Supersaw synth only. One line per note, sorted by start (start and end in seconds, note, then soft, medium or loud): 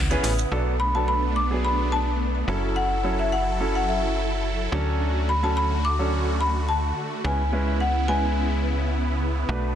0.00 0.49 C#3 medium
0.00 0.49 B3 medium
0.00 0.49 E4 medium
0.51 2.46 A3 medium
0.51 2.46 B3 medium
0.51 2.46 D4 medium
2.48 4.70 F#3 medium
2.48 4.70 E4 medium
2.48 4.70 A4 medium
4.72 7.22 D3 medium
4.72 7.22 A3 medium
4.72 7.22 F#4 medium
7.25 9.47 C#3 medium
7.25 9.75 B3 medium
7.25 9.47 E4 medium
9.49 9.75 A3 medium
9.49 9.75 D4 medium